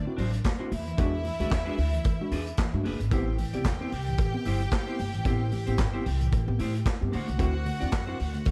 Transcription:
Already playing: D4 D5
0.05 C4 E4 F#4, muted clean electric guitar stroke
0.17 A1 D4 E4 F#4 C5, open hi-hat, muted conga, low conga
0.32 muted clean electric guitar stroke, closed hi-hat
0.44 muted clean electric guitar stroke, kick, snare, clap, closed hi-hat, cowbell, high conga
0.58 C4 D4 E4 F#4 C5
0.71 E2 E4 E5, muted clean electric guitar stroke, open hi-hat, high conga
0.86 E3, muted clean electric guitar stroke, closed hi-hat
0.97 E2 G#3 D4 F#4 G#4 B4, kick, closed hi-hat, cowbell, muted conga
1.25 E3, muted clean electric guitar stroke, open hi-hat, muted conga
1.40 D2 G#3 D4 F#4 G#4 B4, closed hi-hat
1.50 E2, muted clean electric guitar stroke, kick, snare, clap, closed hi-hat, cowbell, high conga
1.65 G#3 D4 F#4 G#4 B4
1.78 D2, muted clean electric guitar stroke, open hi-hat
1.93 E3, muted clean electric guitar stroke, closed hi-hat
2.04 E3, kick, closed hi-hat, cowbell, muted conga
2.20 G#3 D4 F#4, muted clean electric guitar stroke
2.31 E2 D4 F#4 G#4 B4, open hi-hat
2.46 muted clean electric guitar stroke, closed hi-hat
2.57 E3, kick, snare, clap, closed hi-hat, cowbell, high conga
2.73 G2 G#3 D4 F#4, muted clean electric guitar stroke
2.84 F#1 D4 F#4 G#4 B4, open hi-hat, high conga
3.00 G#1, muted clean electric guitar stroke, closed hi-hat
3.11 A1 B3 C4 E4 G4 C5 G5, kick, closed hi-hat, cowbell, muted conga
3.38 A2 E3, muted clean electric guitar stroke, open hi-hat, muted conga
3.53 C2 B3 C4 E4 G4 D5, closed hi-hat
3.64 E2, kick, snare, clap, closed hi-hat, cowbell, high conga
3.80 B3 C4 E4 G4 C5
3.92 C2, muted clean electric guitar stroke, open hi-hat
4.06 A2 E3, muted clean electric guitar stroke, closed hi-hat
4.18 A2 E3, kick, closed hi-hat, cowbell, muted conga
4.34 B3 C4 G4, muted clean electric guitar stroke
4.45 G1 C4 E4 G4 C5, open hi-hat, muted conga, low conga
4.60 muted clean electric guitar stroke, closed hi-hat
4.71 muted clean electric guitar stroke, kick, snare, clap, closed hi-hat, cowbell, high conga
4.87 B3 C4 E4 G4 C5
4.99 G1, muted clean electric guitar stroke, open hi-hat, high conga
5.14 A2 E3, muted clean electric guitar stroke, closed hi-hat
5.25 A1 B3 C4 E4 G4 C5, kick, closed hi-hat, cowbell, muted conga
5.52 A2 E3, muted clean electric guitar stroke, open hi-hat, muted conga
5.67 A1 B3 C4 E4 G4 C5, closed hi-hat
5.78 G1, muted clean electric guitar stroke, kick, snare, clap, closed hi-hat, cowbell, high conga
5.93 B3 C4 E4 G4 C5
6.05 C2, muted clean electric guitar stroke, open hi-hat
6.20 A2 E3, muted clean electric guitar stroke, closed hi-hat
6.32 A2 E3, kick, closed hi-hat, cowbell, muted conga
6.47 A1 B3 C4 G4, muted clean electric guitar stroke
6.59 A2 C4 E4 G4 C5, open hi-hat, muted conga
6.74 muted clean electric guitar stroke, closed hi-hat
6.85 kick, snare, clap, closed hi-hat, cowbell, high conga
7.01 G2 B3 C4 G4, muted clean electric guitar stroke
7.12 D2 D4 F#4 C5 F#5, open hi-hat, high conga
7.28 C2 D3 A3, muted clean electric guitar stroke, closed hi-hat
7.38 D2 C4 D4 E4 F#4 C5, kick, closed hi-hat, cowbell, muted conga
7.65 D3 A3, muted clean electric guitar stroke, open hi-hat, muted conga
7.80 E2 C4 D4 E4 F#4 D5, closed hi-hat
7.92 F#2, kick, snare, clap, closed hi-hat, cowbell, high conga
8.07 C4 D4 E4 F#4 C5
8.19 D2, muted clean electric guitar stroke, open hi-hat
8.34 D3 A3, muted clean electric guitar stroke, closed hi-hat
8.45 D3 A3, kick, closed hi-hat, cowbell, muted conga

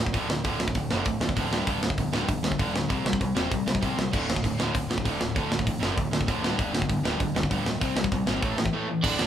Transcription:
Already playing: D2
0.00 A2
0.06 kick
0.14 D1 D2 A2 D3, kick, open hi-hat
0.29 D1 D2 A2, snare
0.44 D1 D2 A2 D3, kick, open hi-hat
0.60 D1 D2 A2, snare
0.68 kick
0.75 D1 D2 A2, kick, open hi-hat
0.90 F#1 D2 A2 D3, snare
1.05 D1 D2 A2, kick, open hi-hat
1.20 D2 A2, snare
1.29 kick
1.37 D1 D2 A2 D3, kick, open hi-hat
1.51 D1 G2 D3 G3, snare
1.67 D1 G2 D3 G3, kick, open hi-hat
1.81 D1 G2 D3, snare
1.90 kick
1.98 D1 G2 D3, kick, open hi-hat
2.13 D1 G2 D3 G3, snare
2.28 D1 G2 D3, kick, open hi-hat
2.43 D1 G2 D3, snare
2.52 kick
2.59 D1 G2 D3 G3, kick, open hi-hat
2.74 D1 G2 D3, snare
2.89 C2 C3 G3 C4, kick, open hi-hat
3.04 C2 C3 G3, snare
3.13 kick
3.21 C2 C3 G3, kick, open hi-hat
3.35 E1 C3 G3 C4, snare
3.51 C2 C3 G3, kick, open hi-hat
3.67 C2 C3 G3, snare
3.75 kick
3.82 C2 C3 G3 C4, kick, open hi-hat
3.98 C2 C3 G3, snare
4.13 D1 D2 A2 D3, kick, crash
4.28 D1 D2 A2, snare
4.36 kick
4.44 D1 D2 A2, kick, open hi-hat
4.59 D1 D2 A2 D3, snare
4.75 D1 D2 A2, kick, open hi-hat
4.90 D1 D2 A2, snare
4.98 kick
5.05 D1 D2 A2 D3, kick, open hi-hat
5.21 D1 D2 A2, snare
5.36 D1 D2 A2 D3, kick, open hi-hat
5.50 D1 D2 A2, snare
5.59 kick
5.66 D1 D2 A2, kick, open hi-hat
5.80 F#1 D2 A2 D3, snare
5.96 D1 D2 A2, kick, open hi-hat
6.12 D2 A2, snare
6.21 kick
6.28 D1 D2 A2 D3, kick, open hi-hat
6.42 D1 G2 D3 G3, snare
6.58 D1 G2 D3 G3, kick, open hi-hat
6.73 D1 G2 D3, snare
6.82 kick
6.89 D1 G2 D3, kick, open hi-hat
7.03 D1 G2 D3 G3, snare
7.19 D1 G2 D3, kick, open hi-hat
7.35 D1 G2 D3, snare
7.43 kick
7.49 D1 G2 D3 G3, kick, open hi-hat
7.65 D1 G2 D3, snare
7.81 C2 C3 G3 C4, kick, open hi-hat
7.96 C2 C3 G3, snare
8.04 kick
8.11 C2 C3 G3, kick, open hi-hat
8.26 G#1 C3 G3 C4, snare
8.41 A1 A2 E3 A3, kick, open hi-hat
8.57 A2 E3, snare
8.66 kick
8.73 A2 E3 A3
8.89 A2 E3
9.03 D1 D2 A2 D3 D4 D5, kick, crash
9.18 D1 D2 A2 D3, snare

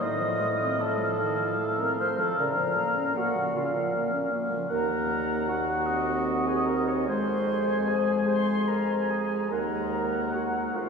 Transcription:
0.00 A2 D#3 D#5 F5 D#6
0.21 F3
0.41 A3
0.61 C4
0.80 A3 A4 A5
0.99 F3
1.18 D#3
1.38 F3
1.58 A3
1.78 C4 A#4 A#5
1.98 A3 C5 C6
2.18 F3 A4 A5
2.38 A#2 C#3 A#4 A#5
2.57 F3
2.77 A#3
2.96 C#4
3.15 A#3 F#4 F#5
3.35 F3
3.54 C#3 F4 F5
3.74 F3
3.95 A#3
4.13 C#4
4.32 A#3
4.51 F3
4.69 D#2 A#3 A#4 F#5 A#5
5.48 F#4 F#5
5.86 C4 D#5
6.46 G#4 G#5
6.65 A#4 A#5
6.87 C#5 C#6
7.07 F2 G#3 C5 G#5 C6
7.88 G#4 G#5
8.27 C5 G#5 C6
8.68 A#4 A#5
9.10 G#4 G#5
9.49 D#2 A#3 A#4 F#5 A#5
10.32 F#4 F#5
10.73 F2 A3 F4 F5

